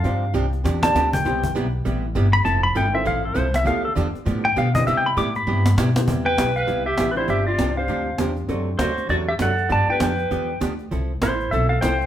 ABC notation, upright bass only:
X:1
M:4/4
L:1/8
Q:"Swing" 1/4=199
K:C
V:1 name="Upright bass" clef=bass
G,,2 C,,2 E,,2 D,,2 | C,,2 B,,,2 A,,,2 G,,,2 | F,,,2 G,,,2 A,,,2 C,,2 | D,,2 E,, z A,,2 B,,2 |
C,2 A,,2 G,,2 B,,2 | E,,2 B,,,2 C,,2 A,,,2 | G,,,2 C,,2 D,,2 E,,2 | ^F,,2 D,,2 E,,2 F,,2 |
G,, z F,,2 E,,2 D,,2 | C,,2 A,,,2 B,,,2 C,,2 |]